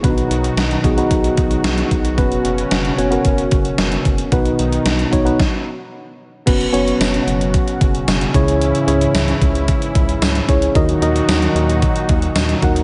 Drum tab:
CC |----------------|----------------|----------------|x---------------|
HH |xxxxxxxxxxxxxxxx|xxxxxxxxxxxxxxxx|xxxxxxxx--------|xxxxxxxxxxxxxxxx|
TB |----------------|----------------|----------------|----x-------x---|
SD |----o-------o---|----o-------o---|----o---o-------|----o-------o---|
BD |o-----o-o-o---o-|o-------o-o---o-|o-----o-o-------|o-------o-o---o-|

CC |----------------|----------------|
HH |xxxxxxxxxxxxxxxx|xxxxxxxxxxxxxxxx|
TB |----x-------x---|----x-------x---|
SD |----o-------o---|----o-------o---|
BD |------o-o-o---o-|o-------o-o---o-|